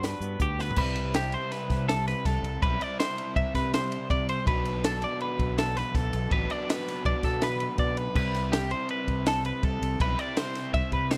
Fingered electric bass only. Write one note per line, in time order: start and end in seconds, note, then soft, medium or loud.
0.00 0.13 G2 medium
0.20 0.35 G2 medium
0.40 0.69 D2 medium
0.77 1.34 C2 loud
1.70 2.13 C2 medium
2.26 2.40 C2 loud
2.42 2.57 C2 loud
2.63 2.77 B1 loud
3.36 3.43 C2 loud
3.54 3.97 C3 medium
4.10 4.39 C3 medium
4.47 5.04 B1 loud
5.39 5.82 B1 medium
5.94 6.09 B1 loud
6.13 6.27 B1 loud
6.31 6.45 A1 loud
7.06 7.13 B1 loud
7.24 7.66 B2 medium
7.78 8.07 B2 medium
8.16 8.72 C2 loud
9.08 9.51 C2 medium
9.63 9.77 C2 loud
9.82 9.96 C2 loud
10.00 10.14 B1 loud
10.73 10.81 C2 medium
10.92 11.18 C3 medium